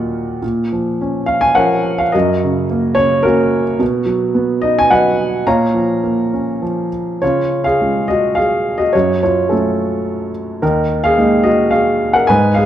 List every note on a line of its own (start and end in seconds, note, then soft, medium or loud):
0.00 0.39 D#2 medium
0.00 0.42 A#2 soft
0.00 0.39 D#3 soft
0.00 0.40 F#3 soft
0.00 0.45 A#4 medium
0.00 0.45 D#5 medium
0.00 0.44 F#5 medium
0.42 2.11 A#2 medium
0.72 1.56 F3 soft
1.01 2.12 C#4 soft
1.26 1.43 F5 medium
1.41 1.56 G#5 medium
1.55 2.13 F3 soft
1.55 2.10 A#4 medium
1.55 2.10 C#5 medium
1.55 2.00 F#5 medium
1.98 2.14 F5 medium
2.12 3.77 F#2 medium
2.12 2.94 F#4 soft
2.12 2.93 A#4 soft
2.12 2.65 D#5 medium
2.44 2.95 C#3 medium
2.70 3.23 A#3 medium
2.95 3.78 C#3 medium
2.95 3.25 C#5 medium
3.23 3.79 A#3 medium
3.23 3.77 C#4 medium
3.23 3.77 F#4 medium
3.23 3.63 A#4 medium
3.79 5.41 B2 medium
4.06 4.89 F#3 medium
4.35 5.42 B3 soft
4.61 5.44 D#4 soft
4.61 4.76 D#5 medium
4.79 4.92 G#5 medium
4.90 5.44 F#3 medium
4.90 5.42 B4 medium
4.90 5.42 D#5 medium
4.90 5.48 F#5 medium
5.46 7.18 A#2 medium
5.46 6.89 C#5 medium
5.46 6.89 F5 medium
5.46 6.89 A#5 medium
5.74 6.61 F3 soft
6.04 7.18 A#3 soft
6.33 7.19 C#4 soft
6.62 7.20 F3 soft
7.22 8.91 C#3 medium
7.22 7.64 F4 medium
7.22 7.63 C#5 medium
7.64 8.06 G#4 medium
7.64 8.10 F5 medium
7.81 8.91 G#3 soft
7.81 8.91 C#4 soft
7.81 8.92 F4 soft
8.08 8.36 F#4 soft
8.08 8.38 D#5 medium
8.35 8.77 G#4 soft
8.35 8.80 F5 medium
8.78 8.93 F#4 soft
8.78 8.94 D#5 medium
8.93 10.58 F#2 medium
8.93 9.21 F#4 medium
8.93 9.21 C#5 medium
9.23 9.49 F4 soft
9.23 9.51 C#5 medium
9.49 10.60 F#3 soft
9.49 10.59 A3 soft
9.49 10.30 C#4 soft
9.49 10.29 A4 medium
10.62 12.25 D#2 medium
10.62 11.01 D#4 medium
10.62 11.05 A#4 medium
11.04 11.43 G#4 medium
11.04 11.46 F5 medium
11.18 12.26 G#3 soft
11.18 12.26 A#3 soft
11.18 12.26 D#4 soft
11.43 11.70 F#4 medium
11.43 11.73 D#5 medium
11.71 12.12 G#4 medium
11.71 12.15 F5 medium
12.13 12.28 A#4 medium
12.13 12.27 F#5 medium
12.27 12.66 G#2 medium
12.27 12.55 B4 medium
12.27 12.57 G#5 medium
12.54 12.66 G#4 medium
12.54 12.66 F5 medium